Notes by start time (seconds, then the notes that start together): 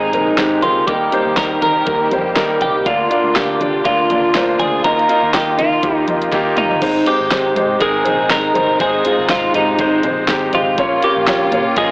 Already playing: G#2 C3 G#3 A#3 C4 D#4 G4 G#4 A#4
0.13 A#1 G#3 C4 D#4 A#4, closed hi-hat, floor tom
0.38 G#1 G#3 C4 D#4 G4, kick, snare, clap, closed hi-hat
0.62 C#2 G#3 C4 D#4 F4 A#4, closed hi-hat, floor tom
0.87 D#2 D#3 G3 A#3 D#4 G4 A#4, kick, closed hi-hat
1.12 G3 A#3 D#4 C5, closed hi-hat
1.26 D#2
1.36 D#2 G3 A#3 D#4 A#4, kick, snare, clap, closed hi-hat
1.61 D#3 G3 A#3 D#4 A#4, closed hi-hat, floor tom
1.86 D#2 G3 A#3 D#4 A#4, kick, closed hi-hat
2.11 F2 G3 A#3 D#4 C5, closed hi-hat, floor tom
2.35 D#2 G3 A#3 D#4 A#4, kick, snare, clap, closed hi-hat
2.60 C2 G3 A#3 D#4 G4 A#4, closed hi-hat, floor tom
2.86 D2 D3 A#3 D4 F4 D5, kick, closed hi-hat
3.10 A#3 D4 F4 D5, closed hi-hat
3.24 D2
3.35 D2 A#3 D4 F4 G4 D5, kick, snare, clap, closed hi-hat
3.60 D3 A#3 D4 F4 D5, closed hi-hat, floor tom
3.84 D2 A#3 D4 F4 D5, kick, closed hi-hat
4.10 D#2 A#3 D4 F4 D5, closed hi-hat, floor tom
4.35 D2 A#3 D4 F4 C5, kick, snare, clap, closed hi-hat
4.60 D2 A#3 D4 F4 G#4 D5, closed hi-hat, floor tom
4.84 D#2 D#3 A#3 D#4 F4 A#4 D#5, kick, closed hi-hat
4.99 closed hi-hat
5.08 A#3 D#4 F4 D#5, closed hi-hat
5.23 D#2
5.33 D#2 A#3 D#4 F4 G4 D#5, kick, snare, clap, closed hi-hat
5.57 D#3 A#3 D#4 F4 D#5, closed hi-hat, floor tom
5.83 D#2 A#3 D#4 F4 G4, kick, closed hi-hat
6.08 F2 A#3 D#4 F4 D#5, closed hi-hat, floor tom
6.22 closed hi-hat
6.32 D#2 A#3 D#4 F4 G4, kick, snare, closed hi-hat
6.56 G1 A#3 D#4 F4 D#5, closed hi-hat, mid tom
6.71 floor tom
6.81 G#1 G#2 C3 G#3 C4 D#4 C5, kick, closed hi-hat, crash
7.06 G#3 C4 D#4 G4 C5, closed hi-hat
7.21 G#1
7.31 G#1 G#3 C4 D#4 C5, kick, snare, clap, closed hi-hat
7.55 G#2 G#3 C4 D#4 C5, closed hi-hat, floor tom
7.80 G#1 G#3 C4 D#4 G#4 A#4, kick, closed hi-hat
8.04 A#1 G#3 C4 D#4 C5, closed hi-hat, floor tom
8.30 G#1 G#3 C4 D#4 A#4 D#5, kick, snare, clap, closed hi-hat
8.54 G1 G#3 C4 D#4 C5, closed hi-hat, floor tom
8.79 G#1 G#2 G#3 C4 D#4 G#4 C5, kick, closed hi-hat
9.04 G#3 C4 D#4 F4, closed hi-hat
9.19 G#1
9.29 G#1 G#3 C4 D#4 F4, kick, snare, clap, closed hi-hat
9.54 G#2 G#3 C4 D#4 G4, closed hi-hat, floor tom
9.79 G#1 G#3 C4 D#4 C5, kick, closed hi-hat
10.03 A#1 G#3 C4 D#4 C5, closed hi-hat, floor tom
10.28 G#1 G#3 C4 D#4 G4, kick, snare, clap, closed hi-hat
10.53 G#1 G#3 C4 D#4 F4 G4, closed hi-hat, floor tom
10.78 A#1 A#2 C#3 A#3 C#4 F4 C#5, kick, closed hi-hat
11.02 A#3 C#4 F4 G4 A#4, closed hi-hat
11.17 A#1
11.27 A#1 A#3 C#4 F4 C#5, kick, snare, clap, closed hi-hat
11.52 A#2 A#3 C#4 F4 C#5, closed hi-hat, floor tom
11.76 A#1 A#3 C#4 F4 G#4 D#5, kick, closed hi-hat